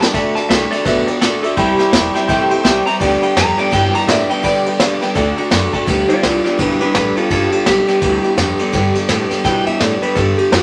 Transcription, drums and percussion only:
0.02 snare
0.14 kick, snare, ride
0.36 snare, ride
0.50 snare, ride
0.72 snare, ride
0.86 kick, snare, ride
1.07 ride
1.22 snare, ride
1.44 ride
1.57 kick, snare, ride
1.79 snare, ride
1.93 snare, ride
2.15 snare, ride
2.29 kick, ride
2.51 ride
2.65 snare, ride
2.87 ride
3.01 kick, ride
3.23 ride
3.37 snare, ride
3.58 ride
3.72 kick, snare, ride
3.94 ride
4.08 snare, ride
4.30 ride
4.44 kick, ride
4.66 ride
4.80 snare, ride
5.02 snare, ride
5.15 kick, snare, ride
5.38 ride
5.51 snare, ride
5.73 kick, ride
5.87 kick, snare, ride
6.09 snare, ride
6.23 snare, ride
6.45 snare, ride
6.59 kick, snare, ride
6.81 ride
6.95 snare, ride
7.17 ride
7.30 kick, ride
7.52 ride
7.66 snare, ride
7.88 snare, ride
8.02 kick, snare, ride
8.24 ride
8.38 snare, ride
8.59 ride
8.73 kick, snare, ride
8.95 snare, ride
9.09 snare, ride
9.31 snare, ride
9.45 kick, snare, ride
9.66 ride
9.80 snare, ride
10.02 ride
10.16 kick, snare, ride
10.38 ride
10.52 snare, ride

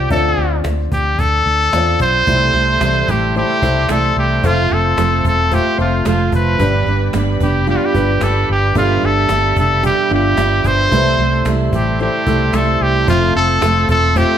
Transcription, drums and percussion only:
0.10 cajon bass
0.64 cajon slap
0.92 cajon bass
1.19 cajon bass
1.73 cajon slap
2.00 cajon bass
2.27 cajon bass
2.81 cajon slap
3.08 cajon bass
3.35 cajon slap
3.62 cajon bass
3.89 cajon slap
4.17 cajon slap
4.44 cajon bass
4.97 cajon slap
5.13 cajon slap
5.25 cajon bass
5.52 cajon bass
6.05 cajon slap
6.32 cajon bass
6.60 cajon bass
7.13 cajon slap
7.29 cajon slap
7.41 cajon bass
7.68 cajon slap
7.95 cajon bass
8.09 cajon slap
8.21 cajon slap
8.49 cajon slap
8.75 cajon bass
8.90 cajon slap
9.02 cajon slap
9.29 cajon slap
9.45 cajon slap
9.57 cajon bass
9.83 cajon bass
10.10 cajon slap
10.37 cajon slap
10.53 cajon slap
10.64 cajon bass
10.80 cajon slap
10.92 cajon bass
11.19 cajon slap
11.45 cajon slap
11.61 cajon slap
11.73 cajon bass
12.00 cajon slap
12.27 cajon bass
12.53 cajon slap
13.08 cajon bass
13.62 cajon slap
13.77 cajon slap
13.89 cajon bass
14.04 cajon slap
14.16 cajon bass

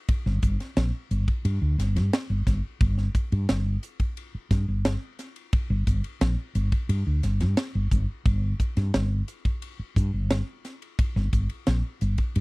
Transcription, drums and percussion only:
0.09 kick, ride
0.26 snare
0.42 kick, hi-hat pedal, ride
0.60 snare, ride
0.77 snare, ride
1.11 hi-hat pedal, ride
1.28 kick, ride
1.45 ride
1.79 snare, hi-hat pedal, ride
1.96 snare, ride
2.13 snare, ride
2.47 kick, snare, hi-hat pedal, ride
2.81 kick, ride
2.98 snare
3.15 kick, hi-hat pedal, ride
3.32 ride
3.49 snare, ride
3.83 hi-hat pedal, ride
4.00 kick, ride
4.17 ride
4.51 kick, snare, hi-hat pedal, ride
4.85 snare, ride
5.19 snare, hi-hat pedal, ride
5.36 ride
5.53 kick, ride
5.87 kick, hi-hat pedal, ride
6.04 ride
6.21 snare, ride
6.55 hi-hat pedal, ride
6.72 kick, ride
6.89 ride
7.23 snare, hi-hat pedal, ride
7.40 snare, ride
7.57 snare, ride
7.91 kick, hi-hat pedal, ride
8.26 kick, ride
8.60 kick, hi-hat pedal, ride
8.77 snare, ride
8.94 snare, ride
9.28 hi-hat pedal, ride
9.45 kick, ride
9.62 ride
9.96 kick, hi-hat pedal, ride
10.30 snare, ride
10.65 snare, hi-hat pedal, ride
10.82 ride
10.99 kick, ride
11.16 snare
11.33 kick, hi-hat pedal, ride
11.50 ride
11.67 snare, ride
12.01 hi-hat pedal, ride
12.18 kick, ride
12.35 ride

